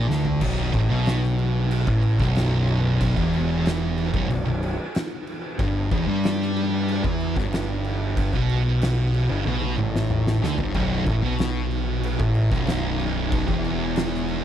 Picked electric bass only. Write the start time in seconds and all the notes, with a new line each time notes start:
0.09 D2
0.41 B0
0.74 A1
0.90 B1
1.87 A1
2.19 B0
3.17 E1
4.14 B0
4.30 B0
4.46 B0
5.59 G1
5.91 E1
6.07 G2
7.05 E2
7.36 G1
8.33 B1
9.30 G1
9.46 B1
9.78 A1
10.42 D2
10.58 G1
10.74 B0
11.06 A1
11.22 B1
12.19 A1
12.52 B0
13.48 E1